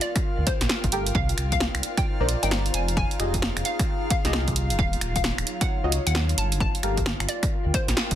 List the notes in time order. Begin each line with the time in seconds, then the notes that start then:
Already playing: F4 A#4 F5
0.01 D5 G5, closed hi-hat
0.16 finger snap, kick, closed hi-hat
0.38 D2
0.47 C5, kick, closed hi-hat
0.61 A#1, snare, closed hi-hat
0.69 snare
0.84 G1, kick, closed hi-hat
0.92 G4 A4 A#4 G5, closed hi-hat
1.06 closed hi-hat
1.15 C2 D#4 F4 F5, kick
1.29 closed hi-hat
1.33 D5
1.38 C2, finger snap, closed hi-hat
1.52 F5, kick, closed hi-hat
1.60 snare
1.67 C5
1.75 C2, finger snap, closed hi-hat
1.83 closed hi-hat
1.88 A#5
1.97 G5, finger snap, kick, closed hi-hat
2.20 A#1 D#4 A#4 C5 D5
2.29 closed hi-hat
2.43 G1 D#4 A#4 C5 D5 G5, closed hi-hat
2.51 snare
2.66 closed hi-hat
2.74 F1 G#5, closed hi-hat
2.82 G#4
2.88 closed hi-hat
2.97 G#5, kick
3.11 closed hi-hat
3.20 F1 F4 G4 G#4 D#5 F5, finger snap, closed hi-hat
3.34 kick, closed hi-hat
3.41 G5, snare
3.57 F1, finger snap, closed hi-hat
3.65 F5, closed hi-hat
3.79 finger snap, kick, closed hi-hat
4.10 F5, kick, closed hi-hat
4.25 C2 F4 G4 G#4 D#5, snare, closed hi-hat
4.33 snare
4.48 kick, closed hi-hat
4.56 closed hi-hat
4.66 F#3
4.70 D#1, closed hi-hat
4.79 D#1 F5, kick
4.93 C#5, closed hi-hat
5.01 D#1, finger snap, closed hi-hat
5.16 F5, kick, closed hi-hat
5.24 snare
5.38 D#1, finger snap, closed hi-hat
5.47 closed hi-hat
5.61 F#5, finger snap, kick, closed hi-hat
5.84 C#2 F4 F#4 C#5 D#5
5.92 closed hi-hat
6.07 D#2 F#5, closed hi-hat
6.15 snare
6.29 closed hi-hat
6.37 G1 F4 A5, closed hi-hat
6.52 closed hi-hat
6.60 A5, kick
6.75 closed hi-hat
6.83 G1 G4 A4 A#4 F5, finger snap, closed hi-hat
6.92 A#4
6.97 kick, closed hi-hat
7.03 G5, snare
7.20 G1, finger snap, closed hi-hat
7.29 D5, closed hi-hat
7.43 finger snap, kick, closed hi-hat
7.66 D2
7.74 C5, kick, closed hi-hat
7.88 A#1, snare, closed hi-hat
7.97 snare
8.11 G1, kick, closed hi-hat